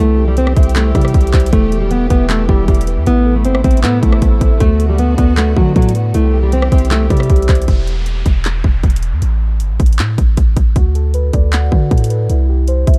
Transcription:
0.00 C2 E3 G3 A3 C4 E4 G4
0.18 G4
0.28 G3
0.37 C4 C5, closed hi-hat
0.47 cross-stick
0.57 C2 C4 E5, kick, closed hi-hat
0.63 closed hi-hat
0.69 closed hi-hat
0.76 A3 E6, clap, closed hi-hat
0.95 C3 G3 E4, kick, cross-stick, closed hi-hat
1.01 cross-stick, closed hi-hat
1.08 closed hi-hat
1.14 C2 G4, kick, closed hi-hat
1.21 closed hi-hat
1.27 closed hi-hat
1.33 C2 C5, kick, clap, closed hi-hat
1.40 closed hi-hat
1.46 closed hi-hat
1.53 E1 A3 B3 E4, kick, closed hi-hat
1.72 G4, closed hi-hat
1.82 G3
1.91 B3 B4, closed hi-hat
2.10 E1 B3 E5, kick, closed hi-hat
2.29 A3 E6, clap, closed hi-hat
2.49 E1 G3 E4, kick
2.68 E1 G3 G4, kick, closed hi-hat
2.75 closed hi-hat
2.81 closed hi-hat
2.87 B4, closed hi-hat
2.97 E2
3.06 A1 C3 A3 B3 E4, closed hi-hat
3.26 A4
3.36 A3
3.45 G1 C4 C5, closed hi-hat
3.55 A1, cross-stick
3.64 A1 C4 E5, kick, closed hi-hat
3.71 closed hi-hat
3.77 closed hi-hat
3.83 A2 B3 E6, clap, closed hi-hat
4.03 A1 A3 E4, kick, closed hi-hat
4.12 cross-stick
4.22 A1 A4, kick, closed hi-hat
4.41 A1 C5, kick, closed hi-hat
4.60 D2 D3 A3 B3 F#4, kick, closed hi-hat
4.80 A4, closed hi-hat
4.90 G3
4.98 B3 B4, closed hi-hat
5.18 D2 B3 D5, kick, closed hi-hat
5.37 A3 F#5, clap, closed hi-hat
5.57 D3 F#3 F#4, kick
5.75 A2 F#3 A4, kick, closed hi-hat
5.82 closed hi-hat
5.89 closed hi-hat
5.95 B4, closed hi-hat
6.14 C2 E3 G3 A3 C4 E4 G4, closed hi-hat
6.33 G4
6.43 G3
6.52 C4 C5, closed hi-hat
6.62 cross-stick
6.72 C2 C4 E5, kick, closed hi-hat
6.78 closed hi-hat
6.85 closed hi-hat
6.91 A3 E6, clap, closed hi-hat
7.10 C3 G3 E4, kick, cross-stick, closed hi-hat
7.17 cross-stick, closed hi-hat
7.23 closed hi-hat
7.30 C2 G4, kick, closed hi-hat
7.36 closed hi-hat
7.42 closed hi-hat
7.49 C2 C5, kick, clap, closed hi-hat
7.55 closed hi-hat
7.62 closed hi-hat
7.68 E1, kick, closed hi-hat, downlifter
7.87 closed hi-hat
8.06 closed hi-hat
8.26 E1, kick, closed hi-hat
8.45 clap, closed hi-hat
8.64 E1, kick
8.83 E1, kick, closed hi-hat
8.90 closed hi-hat
8.96 closed hi-hat
9.03 closed hi-hat
9.12 E2
9.22 A1, closed hi-hat
9.60 G1, closed hi-hat
9.70 A1
9.80 A1, kick, closed hi-hat
9.86 closed hi-hat
9.93 closed hi-hat
9.99 A2, clap, closed hi-hat
10.18 A1, kick, closed hi-hat
10.37 A1, kick, closed hi-hat
10.57 A1, kick, closed hi-hat
10.76 D2 F#4, kick, closed hi-hat
10.95 A4, closed hi-hat
11.14 B4, closed hi-hat
11.33 D2 D5, kick, closed hi-hat
11.53 F#5, clap, closed hi-hat
11.72 D3 F#4, kick
11.91 A2 A4, kick, closed hi-hat
11.98 closed hi-hat
12.04 closed hi-hat
12.10 B4, closed hi-hat
12.30 C2 E4, closed hi-hat
12.49 G4
12.68 C5, closed hi-hat
12.87 C2 E5, kick, closed hi-hat
12.94 closed hi-hat

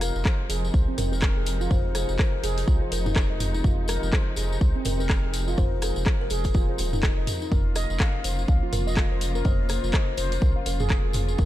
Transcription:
Already playing: F1 C3 F3 G#3 D#4
0.01 A#4, cross-stick, open hi-hat, tambourine
0.15 F1, tambourine
0.25 C5, kick, cross-stick, clap, tambourine
0.49 F1 G#4, open hi-hat, tambourine
0.65 tambourine
0.74 C2 C5, kick, tambourine
0.88 C4
0.98 F1 A#4, mid tom, open hi-hat, tambourine
1.12 A#4, tambourine
1.22 kick, cross-stick, clap
1.36 F1 G#4
1.46 open hi-hat, tambourine
1.61 F4, tambourine
1.70 F1 A#4 C5, kick, mid tom, tambourine
1.95 G#4 C5, cross-stick, open hi-hat, tambourine
2.09 F1, tambourine
2.19 A#4, kick, cross-stick, clap, tambourine
2.43 F1 G#4, open hi-hat, tambourine
2.58 open hi-hat, tambourine
2.68 C2 F4, kick, tambourine
2.82 C5
2.91 F1 A#4, open hi-hat, tambourine
3.06 D#4, mid tom, tambourine
3.16 kick, cross-stick, clap, tambourine
3.30 F1 D#5
3.40 mid tom, open hi-hat, tambourine
3.54 D#4, tambourine
3.64 F1 F4, kick, mid tom, tambourine
3.88 A#4, cross-stick, open hi-hat, tambourine
4.03 F1, tambourine
4.13 C5, kick, cross-stick, clap, tambourine
4.36 F1 G#4, open hi-hat, tambourine
4.52 tambourine
4.61 C2 C5, kick, tambourine
4.75 C4
4.85 F1 A#4, mid tom, open hi-hat, tambourine
5.00 A#4, tambourine
5.10 kick, cross-stick, clap, tambourine
5.24 F1 G#4
5.33 open hi-hat, tambourine
5.48 F4, tambourine
5.58 F1 A#4 C5, kick, mid tom, tambourine
5.82 G#4 A#4, cross-stick, open hi-hat, tambourine
5.96 F1, tambourine
6.05 A#4, kick, cross-stick, clap, tambourine
6.21 A#4
6.30 F1 G#4, open hi-hat, tambourine
6.44 kick, open hi-hat, tambourine
6.54 F1 F4, kick, tambourine
6.69 C5
6.78 D#1 A#4, open hi-hat, tambourine
6.93 D#4 A#4, mid tom, tambourine
7.03 kick, cross-stick, clap, tambourine
7.18 F1 D#5
7.27 mid tom, open hi-hat, tambourine
7.42 D#4, tambourine
7.51 F1 C#3 F3 A#3 F4 A#4, kick, mid tom, tambourine
7.75 D#5, cross-stick, open hi-hat, tambourine
7.90 F1, tambourine
7.99 F5, kick, cross-stick, clap, tambourine
8.24 F1 C5, open hi-hat, tambourine
8.39 tambourine
8.48 C2 F5, kick, tambourine
8.63 F4
8.73 F1 A#4, mid tom, open hi-hat, tambourine
8.87 D#5, tambourine
8.96 kick, cross-stick, clap, tambourine
9.11 F1 C5
9.21 open hi-hat, tambourine
9.35 A#4, tambourine
9.45 F1 C5 D#5, kick, mid tom, tambourine
9.69 C5, cross-stick, open hi-hat, tambourine
9.84 F1, tambourine
9.93 D#5, kick, cross-stick, clap, tambourine
10.17 F1 C5, open hi-hat, tambourine
10.32 open hi-hat, tambourine
10.42 C2 A#4, kick, tambourine
10.56 F5
10.66 F1 A#4, open hi-hat, tambourine
10.80 G#4, mid tom, tambourine
10.90 kick, cross-stick, clap, tambourine
11.04 F1 G#4
11.13 mid tom, open hi-hat, tambourine
11.28 G#4, tambourine
11.38 F1 G#3 A#4, kick, mid tom, tambourine

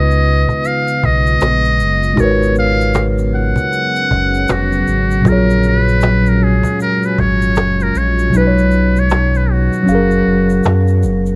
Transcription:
Already playing: C#2 C#3 G#3 B3 D#4 F4 B4 D#5
0.11 shaker
0.27 cajon slap
0.48 cajon bass, shaker
0.64 F5, cajon slap, shaker
0.87 shaker
1.03 B1 D#5, cajon bass
1.26 shaker
1.40 A#1, cajon slap, shaker
1.65 shaker
1.80 F#1, cajon slap, shaker
2.03 shaker
2.14 G#3 D#4, cajon bass
2.18 G#1 C#3 F#3 C#4 F#4 A#4 C#5, shaker
2.23 B4 C#5
2.43 shaker
2.55 F5, cajon slap, shaker
2.81 shaker
2.94 cajon slap, shaker
3.18 shaker
3.34 F#5, cajon slap
3.56 cajon bass, shaker
3.72 cajon slap, shaker
3.95 shaker
4.11 F#1, cajon bass
4.34 shaker
4.48 F1 F#4, cajon slap, shaker
4.72 shaker
4.87 G#1, cajon slap, shaker
5.11 shaker
5.21 A#2 F#3
5.25 A#1 G#3 F4 A#4, cajon bass, shaker
5.29 G#4 C#5
5.50 shaker
5.63 A#4, shaker
5.78 B4
5.89 shaker
6.01 cajon slap, shaker
6.26 A#4, shaker
6.42 G#4, cajon slap
6.64 cajon bass, shaker
6.80 A#4, cajon slap, shaker
7.03 B4, shaker
7.19 G#1 C#5, cajon bass
7.42 shaker
7.56 F#1, cajon slap, shaker
7.80 A#4, shaker
7.95 A#1 C#5, cajon slap, shaker
8.19 shaker
8.29 B2 F#3
8.34 B1 D#3 B3 D#4 B4, cajon slap, shaker
8.38 B4
8.47 C#5
8.58 shaker
8.71 cajon slap, shaker
8.96 cajon slap, shaker
8.98 C#5, cajon slap
9.10 cajon slap, shaker
9.34 B4, shaker
9.50 F#4, cajon slap
9.72 cajon slap, shaker
9.83 F#3 C#4
9.87 F#1 C#3 F#3 F5, cajon slap, shaker
9.92 G#4 A#4
10.11 shaker
10.27 F#1, cajon slap
10.50 cajon slap, shaker
10.63 F#2, cajon slap, shaker
10.87 shaker
11.03 F#1, cajon slap, shaker
11.26 shaker

